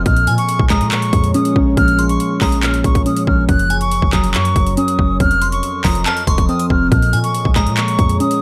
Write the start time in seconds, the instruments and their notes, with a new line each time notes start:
0.06 808-style bass A#1, synth keys A#2, ambient pad F3 A#3 G#4 C#5, flute F6, kick, closed hi-hat
0.16 closed hi-hat
0.27 synth keys A#2, 808-style bass A#2, synth bell G#5, closed hi-hat
0.38 flute C#6, closed hi-hat
0.49 closed hi-hat
0.59 808-style bass A#1, kick
0.70 synth keys G#3, synth bell A#5, flute D#6, kick, clap, closed hi-hat
0.81 808-style bass A#2, closed hi-hat
0.91 synth keys A#2, flute C#6, clap, closed hi-hat
1.02 closed hi-hat
1.13 808-style bass F2, synth keys A#2, kick, closed hi-hat
1.24 closed hi-hat
1.34 synth keys C#4, flute D#6, closed hi-hat
1.45 closed hi-hat
1.56 808-style bass A#1, synth keys C#4, kick
1.77 808-style bass A#1, synth keys A#2, flute F6, kick, closed hi-hat
1.88 closed hi-hat
1.99 synth keys A#2, synth bell C6, closed hi-hat
2.09 flute C#6, closed hi-hat
2.20 closed hi-hat
2.41 808-style bass A#1, synth keys G#3, synth bell A#5, flute D#6, kick, clap, open hi-hat
2.52 closed hi-hat
2.63 synth keys A#2, flute F6, clap, closed hi-hat
2.74 closed hi-hat
2.84 808-style bass A#1, synth keys A#2, flute C#6, kick, closed hi-hat
2.95 kick, closed hi-hat
3.06 synth keys C#4, flute D#6, closed hi-hat
3.17 closed hi-hat
3.27 808-style bass A#1, synth keys C#4, flute F6, kick
3.49 808-style bass F#1, synth keys F#2, ambient pad F#3 C#4 A#4 C#5, flute F#6, kick, closed hi-hat
3.59 closed hi-hat
3.70 synth keys F#2, synth bell G#5, closed hi-hat
3.81 flute C#6, closed hi-hat
3.92 closed hi-hat
4.02 808-style bass F#1, kick
4.13 synth keys F#3, synth bell A#5, flute D#6, kick, clap, closed hi-hat
4.24 closed hi-hat
4.34 808-style bass F#2, synth keys F#2, flute C#6, clap, closed hi-hat
4.45 closed hi-hat
4.56 808-style bass F#1, synth keys F#2, kick, closed hi-hat
4.67 closed hi-hat
4.77 synth keys C#4, flute D#6, closed hi-hat
4.88 closed hi-hat
4.99 808-style bass F#1, synth keys C#4, kick
5.20 808-style bass F1, synth keys F2, ambient pad F3 C4 A4 D#5, flute F6, kick, closed hi-hat
5.31 closed hi-hat
5.42 synth keys F2, synth bell C6, closed hi-hat
5.52 flute C#6, closed hi-hat
5.63 closed hi-hat
5.84 808-style bass F1, synth keys F3, synth bell A#5, flute D#6, kick, clap, open hi-hat
5.95 closed hi-hat
6.06 synth keys F2, synth bell A5, flute F6, clap, closed hi-hat
6.17 closed hi-hat
6.27 808-style bass F1, synth keys F2, synth bell C6, flute C#6, kick, closed hi-hat
6.38 kick, closed hi-hat
6.49 synth keys C4, flute D#6, closed hi-hat
6.59 closed hi-hat
6.70 808-style bass F1, synth keys C4, flute F6, kick
6.92 808-style bass A#1, synth keys A#2, ambient pad A#3 G#4 C#5, flute F6, kick, closed hi-hat
7.02 closed hi-hat
7.13 synth keys A#2, 808-style bass A#2, synth bell G#5, closed hi-hat
7.24 flute C#6, closed hi-hat
7.34 closed hi-hat
7.45 808-style bass A#1, kick
7.56 synth keys G#3, synth bell A#5, flute D#6, kick, clap, closed hi-hat
7.67 808-style bass A#2, closed hi-hat
7.77 synth keys A#2, flute C#6, clap, closed hi-hat
7.88 closed hi-hat
7.99 808-style bass F2, synth keys A#2, kick, closed hi-hat
8.09 closed hi-hat
8.20 synth keys C#4, flute D#6, closed hi-hat
8.31 closed hi-hat